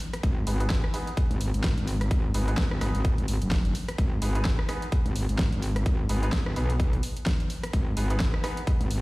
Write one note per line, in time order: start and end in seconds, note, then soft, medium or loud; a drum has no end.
0.00 open hi-hat loud
0.13 cross-stick medium
0.13 closed hi-hat soft
0.23 0.45 G#1 loud
0.23 kick loud
0.23 closed hi-hat medium
0.47 0.82 G#1 medium
0.47 0.58 B3 medium
0.47 0.57 D#4 medium
0.47 0.57 G#4 medium
0.47 0.57 B4 medium
0.47 open hi-hat loud
0.60 0.68 B3 medium
0.60 0.68 D#4 medium
0.60 0.68 G#4 medium
0.60 0.68 B4 medium
0.60 closed hi-hat soft
0.70 kick loud
0.70 snare loud
0.70 closed hi-hat medium
0.84 cross-stick medium
0.94 1.10 B3 medium
0.94 1.10 D#4 medium
0.94 1.10 G#4 medium
0.94 1.10 B4 medium
0.94 open hi-hat medium
1.07 closed hi-hat soft
1.17 kick loud
1.17 closed hi-hat medium
1.31 1.52 G#1 loud
1.31 closed hi-hat soft
1.41 open hi-hat loud
1.54 1.75 G#1 medium
1.54 closed hi-hat soft
1.64 kick loud
1.64 snare loud
1.64 closed hi-hat medium
1.78 2.09 G#1 medium
1.78 closed hi-hat soft
1.87 open hi-hat loud
2.01 cross-stick medium
2.01 closed hi-hat soft
2.11 2.33 G#1 medium
2.11 kick loud
2.11 closed hi-hat medium
2.34 2.56 G#1 medium
2.34 2.45 B3 medium
2.34 2.45 D#4 medium
2.34 2.45 G#4 medium
2.34 2.45 B4 medium
2.34 open hi-hat loud
2.48 2.56 B3 medium
2.48 2.56 D#4 medium
2.48 2.56 G#4 medium
2.48 2.56 B4 medium
2.48 closed hi-hat soft
2.57 2.80 G#1 medium
2.57 kick loud
2.57 snare loud
2.57 closed hi-hat medium
2.71 cross-stick medium
2.81 2.93 G#1 loud
2.81 2.97 B3 medium
2.81 2.97 D#4 medium
2.81 2.97 G#4 medium
2.81 2.97 B4 medium
2.81 cross-stick medium
2.81 open hi-hat medium
2.95 3.16 G#1 loud
2.95 closed hi-hat soft
3.05 kick loud
3.05 closed hi-hat medium
3.18 3.27 G#1 loud
3.18 closed hi-hat soft
3.28 3.39 G#1 loud
3.28 open hi-hat loud
3.42 3.73 F#1 medium
3.42 closed hi-hat soft
3.51 kick loud
3.51 snare loud
3.51 closed hi-hat medium
3.65 closed hi-hat soft
3.75 open hi-hat loud
3.88 cross-stick medium
3.88 closed hi-hat soft
3.98 4.20 G#1 loud
3.98 kick loud
3.98 closed hi-hat medium
4.22 4.57 G#1 loud
4.22 4.32 B3 medium
4.22 4.32 D#4 medium
4.22 4.32 G#4 medium
4.22 4.32 B4 medium
4.22 open hi-hat loud
4.35 4.43 B3 medium
4.35 4.43 D#4 medium
4.35 4.43 G#4 medium
4.35 4.43 B4 medium
4.35 closed hi-hat soft
4.45 kick loud
4.45 snare loud
4.45 closed hi-hat medium
4.59 cross-stick medium
4.69 4.85 B3 medium
4.69 4.85 D#4 medium
4.69 4.85 G#4 medium
4.69 4.85 B4 medium
4.69 cross-stick medium
4.69 open hi-hat medium
4.82 closed hi-hat soft
4.92 kick loud
4.92 closed hi-hat medium
5.06 5.27 G#1 loud
5.06 closed hi-hat soft
5.16 open hi-hat loud
5.29 5.50 G#1 medium
5.29 closed hi-hat medium
5.39 kick loud
5.39 snare loud
5.39 closed hi-hat medium
5.53 5.84 G#1 medium
5.53 closed hi-hat soft
5.62 open hi-hat medium
5.76 cross-stick medium
5.76 closed hi-hat soft
5.86 6.08 G#1 loud
5.86 kick loud
5.86 closed hi-hat medium
6.09 6.31 G#1 loud
6.09 6.20 B3 medium
6.09 6.20 D#4 medium
6.09 6.20 G#4 medium
6.09 6.20 B4 medium
6.09 open hi-hat loud
6.23 6.31 B3 medium
6.23 6.31 D#4 medium
6.23 6.31 G#4 medium
6.23 6.31 B4 medium
6.23 closed hi-hat medium
6.32 6.55 G#1 loud
6.32 kick loud
6.32 snare loud
6.32 closed hi-hat medium
6.46 cross-stick medium
6.56 7.02 B1 medium
6.56 6.72 B3 medium
6.56 6.72 D#4 medium
6.56 6.72 G#4 medium
6.56 6.72 B4 medium
6.56 open hi-hat medium
6.70 closed hi-hat medium
6.80 kick loud
6.80 closed hi-hat medium
6.93 closed hi-hat soft
7.03 open hi-hat loud
7.17 closed hi-hat medium
7.26 kick loud
7.26 snare loud
7.26 closed hi-hat medium
7.40 closed hi-hat soft
7.50 open hi-hat medium
7.63 cross-stick medium
7.63 closed hi-hat soft
7.73 7.95 G#1 medium
7.73 kick loud
7.73 closed hi-hat medium
7.97 8.32 G#1 loud
7.97 8.07 B3 medium
7.97 8.08 D#4 medium
7.97 8.08 G#4 medium
7.97 8.07 B4 medium
7.97 open hi-hat medium
8.10 8.18 B3 medium
8.10 8.18 D#4 medium
8.10 8.18 G#4 medium
8.10 8.18 B4 medium
8.10 closed hi-hat medium
8.20 kick loud
8.20 snare loud
8.20 closed hi-hat medium
8.34 cross-stick medium
8.44 8.60 B3 medium
8.44 8.60 D#4 medium
8.44 8.60 G#4 medium
8.44 8.60 B4 medium
8.44 cross-stick medium
8.44 open hi-hat medium
8.57 closed hi-hat medium
8.67 kick loud
8.67 closed hi-hat medium
8.81 9.01 G#1 loud
8.81 closed hi-hat soft
8.91 open hi-hat medium